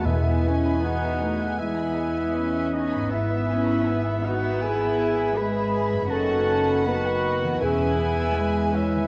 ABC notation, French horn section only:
X:1
M:4/4
L:1/8
Q:1/4=79
K:E
V:1 name="French horn section"
E2 F2 E3 D | E3 F G2 B2 | A2 B2 G3 E |]